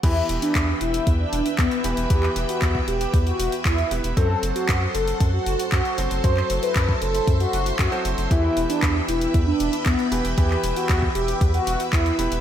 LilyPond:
<<
  \new Staff \with { instrumentName = "String machine" } { \time 4/4 \key e \minor \tempo 4 = 116 << { <b' e'' e'''>1~ | <b' e'' e'''>1 | <a' c'' c'''>1~ | <a' c'' c'''>1 |
<b' e'' e'''>1~ | <b' e'' e'''>1 | } \\ { g''1~ | g''1 | fis''1 | e''1 |
g''1~ | g''1 | } >> }
  \new Staff \with { instrumentName = "Analog polysynth" } { \time 4/4 \key e \minor e'8 r16 d'8 r16 e'8 r16 d'8 r16 b8. r16 | g'8 r16 fis'8 r16 g'8 r16 fis'8 r16 e'8. r16 | a'8 r16 fis'8 r16 a'8 r16 fis'8 r16 fis'8. r16 | c''8 r16 b'8 r16 a'8 r16 fis'8 r16 fis'8. r16 |
e'8 r16 d'8 r16 e'8 r16 d'8 r16 b8. r16 | g'8 r16 fis'8 r16 g'8 r16 fis'8 r16 e'8. r16 | }
  \new Staff \with { instrumentName = "Grand piano" } { \time 4/4 \key e \minor <e b e' g' b'>2.~ <e b e' g' b'>8 <e b e' g' b'>8 | <e b e' g' b'>2.~ <e b e' g' b'>8 <b e' g' b'>8 | <fis c' fis' a' c''>2.~ <fis c' fis' a' c''>8 <fis c' fis' a' c''>8 | <fis c' fis' a' c''>2.~ <fis c' fis' a' c''>16 <fis c' fis' a' c''>8. |
<e b e' g' b'>2.~ <e b e' g' b'>8 <e b e' g' b'>8 | <e b e' g' b'>2.~ <e b e' g' b'>8 <b e' g' b'>8 | }
  \new Staff \with { instrumentName = "Analog synth bass" } { \clef bass \time 4/4 \key e \minor e,16 r16 e,,16 r16 e,16 r16 e,,16 r16 e,16 r16 e,,16 r16 e,16 r16 e,,16 e,,16 | e,16 r16 e,,16 r16 e,16 r16 e,,16 r16 e,16 r16 e,,16 r16 e,16 r16 e,,16 e,,16 | fis,16 r16 fis,,16 r16 fis,16 r16 fis,,16 r16 fis,16 r16 fis,,16 r16 fis,16 r16 fis,,16 fis,,16 | fis,16 r16 fis,,16 r16 fis,16 r16 fis,,16 r16 fis,16 r16 fis,,16 r16 fis,16 r16 fis,,16 fis,,16 |
e,16 r16 e,,16 r16 e,16 r16 e,,16 r16 e,16 r16 e,,16 r16 e,16 r16 e,,16 e,,16 | e,16 r16 e,,16 r16 e,16 r16 e,,16 r16 e,16 r16 e,,16 r16 e,16 r16 e,,16 e,,16 | }
  \new DrumStaff \with { instrumentName = "Drums" } \drummode { \time 4/4 <cymc hh bd>8 hh16 hh16 <hc hh bd>8 hh16 hh16 <hh bd>8 hh16 hh16 <hc hh bd>16 hh16 hh16 hh16 | <hh bd>16 hc16 hh16 hh16 <hc hh bd>16 bd16 hh16 hh16 <hh bd>16 hh16 hh16 hh16 <hc hh bd>16 hh16 hh16 hh16 | <hh bd>8 hh16 hh16 <hc hh bd>8 hh16 hh16 <hh bd>8 hh16 hh16 <hc hh bd>16 hh16 hh16 hh16 | <hh bd>16 hc16 hh16 hh16 <hc hh bd>16 bd16 hh16 hh16 <hh bd>16 hh16 hh16 hh16 <hc hh bd>16 hh16 hh16 hh16 |
<hh bd>8 hh16 hh16 <hc hh bd>8 hh16 hh16 <hh bd>8 hh16 hh16 <hc hh bd>16 hh16 hh16 hh16 | <hh bd>16 hc16 hh16 hh16 <hc hh bd>16 bd16 hh16 hh16 <hh bd>16 hh16 hh16 hh16 <hc hh bd>16 hh16 hh16 hh16 | }
>>